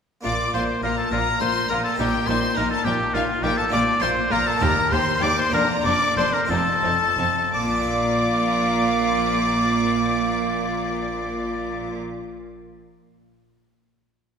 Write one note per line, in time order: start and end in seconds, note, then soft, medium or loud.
0.21 1.93 A#3 medium
0.21 1.93 D4 medium
0.21 1.94 F4 medium
0.21 0.33 F4 medium
0.21 0.52 D5 medium
0.25 0.33 A#1 medium
0.25 0.51 A#2 medium
0.25 0.34 A#2 medium
0.25 0.33 A#3 medium
0.25 0.52 D6 loud
0.54 0.62 A#1 medium
0.54 0.80 A#2 medium
0.54 0.62 A#2 medium
0.54 0.62 A#3 medium
0.54 0.62 F4 medium
0.54 0.82 C5 medium
0.54 0.63 C6 loud
0.83 0.91 A#1 medium
0.83 1.09 A#2 medium
0.83 0.91 A#2 medium
0.83 0.91 A#3 medium
0.83 0.92 F4 medium
0.83 0.97 A#4 medium
0.83 0.97 A#5 medium
0.97 1.11 A4 medium
0.97 1.12 A5 medium
1.12 1.20 A#1 medium
1.12 1.38 A#2 medium
1.12 1.21 A#2 medium
1.12 1.21 A#3 medium
1.12 1.21 F4 medium
1.12 1.40 A#4 medium
1.12 1.41 A#5 loud
1.41 1.49 A#1 medium
1.41 1.67 A#2 medium
1.41 1.50 A#2 medium
1.41 1.49 A#3 medium
1.41 1.50 F4 medium
1.41 1.69 C5 medium
1.41 1.70 C6 loud
1.69 1.78 A#1 medium
1.69 1.96 A#2 medium
1.69 1.78 A#2 medium
1.69 1.78 A#3 medium
1.69 1.79 F4 medium
1.69 1.83 A#4 medium
1.69 1.84 A#5 loud
1.84 1.98 A4 medium
1.84 1.99 A5 medium
1.95 2.06 A#1 medium
1.95 3.66 A#3 medium
1.95 3.67 D#4 medium
1.95 3.68 G4 medium
1.99 2.25 A#2 medium
1.99 2.07 A#2 medium
1.99 2.07 A#3 medium
1.99 2.08 D#4 medium
1.99 2.29 G4 medium
1.99 2.27 G5 loud
2.27 2.36 A#1 medium
2.27 2.54 A#2 medium
2.27 2.36 A#2 medium
2.27 2.36 A#3 medium
2.27 2.36 D#4 medium
2.27 2.58 C5 medium
2.27 2.56 C6 loud
2.56 2.65 A#1 medium
2.56 2.65 A#2 medium
2.56 2.83 A#2 medium
2.56 2.65 A#3 medium
2.56 2.65 D#4 medium
2.56 2.70 A#4 medium
2.56 2.71 A#5 medium
2.70 2.86 A4 medium
2.70 2.85 A5 loud
2.85 2.94 A#1 medium
2.85 2.94 A#2 medium
2.85 3.12 A#2 medium
2.85 2.94 A#3 medium
2.85 2.94 D#4 medium
2.85 3.16 G4 loud
2.85 2.93 G5 loud
3.14 3.22 A#1 medium
3.14 3.23 A#2 medium
3.14 3.41 A#2 medium
3.14 3.23 A#3 medium
3.14 3.22 D#4 medium
3.14 3.45 F4 medium
3.14 3.23 F5 loud
3.43 3.51 A#1 medium
3.43 3.52 A#2 medium
3.43 3.70 A#2 medium
3.43 3.52 A#3 medium
3.43 3.51 D#4 medium
3.43 3.59 G4 loud
3.43 3.58 G5 loud
3.58 3.72 A4 medium
3.58 3.64 A5 loud
3.68 3.80 A#1 medium
3.68 4.56 A#3 medium
3.68 4.57 D4 medium
3.68 4.58 F4 medium
3.68 3.80 F4 medium
3.73 3.81 A#2 medium
3.73 3.99 A#2 medium
3.73 3.81 A#3 medium
3.73 4.03 D5 loud
3.73 3.82 D6 loud
4.02 4.10 A#1 medium
4.02 4.10 A#2 medium
4.02 4.29 A#2 medium
4.02 4.10 A#3 medium
4.02 4.10 F4 medium
4.02 4.33 C5 loud
4.02 4.10 C6 loud
4.31 4.39 A#1 medium
4.31 4.39 A#2 medium
4.31 4.58 A#2 medium
4.31 4.39 A#3 medium
4.31 4.39 F4 medium
4.31 4.48 A#4 loud
4.31 4.46 A#5 loud
4.47 4.63 A4 loud
4.47 4.61 A5 loud
4.57 4.69 D#2 medium
4.57 5.48 A#3 medium
4.57 5.49 D#4 medium
4.57 5.50 G4 medium
4.57 4.69 G4 medium
4.61 4.69 D#2 loud
4.61 4.89 D#2 medium
4.61 4.69 A#3 medium
4.61 4.94 A#4 loud
4.61 4.92 A#5 loud
4.91 4.99 D#2 medium
4.91 5.00 D#2 medium
4.91 5.19 D#2 medium
4.91 5.00 A#3 medium
4.91 5.00 G4 medium
4.91 5.24 C5 loud
4.91 5.21 C6 loud
5.21 5.29 D#2 medium
5.21 5.30 D#2 medium
5.21 5.50 D#2 medium
5.21 5.30 A#3 medium
5.21 5.30 G4 medium
5.21 5.38 D5 loud
5.21 5.37 D6 loud
5.38 5.53 C5 loud
5.38 5.53 C6 loud
5.49 5.60 F1 medium
5.49 5.61 F2 medium
5.49 6.45 A#3 medium
5.49 5.61 A#3 medium
5.49 6.46 D4 medium
5.49 6.47 F4 medium
5.49 5.84 A#5 loud
5.53 5.82 F2 medium
5.53 5.62 D4 medium
5.53 5.68 A#4 loud
5.84 5.93 F1 medium
5.84 5.93 F2 medium
5.84 6.14 F2 medium
5.84 5.93 A#3 medium
5.84 5.94 D4 medium
5.84 6.16 D5 loud
5.84 6.17 D6 loud
6.16 6.24 F1 medium
6.16 6.25 F2 medium
6.16 6.47 F2 medium
6.16 6.25 A#3 medium
6.16 6.25 D4 medium
6.16 6.35 C5 loud
6.16 6.33 C6 loud
6.33 6.52 A#4 medium
6.33 6.40 A#5 loud
6.45 7.48 C4 medium
6.45 7.49 D#4 medium
6.45 7.50 F4 medium
6.49 6.57 F1 medium
6.49 6.80 F2 medium
6.49 6.58 F2 medium
6.49 6.58 C4 medium
6.49 6.59 D#4 medium
6.49 7.53 A4 medium
6.49 7.51 A5 loud
6.83 6.91 F1 medium
6.83 6.92 F2 medium
6.83 7.15 F2 medium
6.83 6.92 C4 medium
6.83 6.92 D#4 medium
7.18 7.26 F1 medium
7.18 7.50 F2 medium
7.18 7.26 F2 medium
7.18 7.26 C4 medium
7.18 7.27 D#4 medium
7.53 11.95 A#1 medium
7.53 11.95 A#2 medium
7.53 11.95 A#3 medium
7.53 11.95 F4 medium
7.53 11.95 D5 medium
7.53 11.94 D6 loud
7.61 12.02 A#3 medium
7.68 12.09 D4 medium
7.75 12.16 F4 medium
7.82 12.23 D5 medium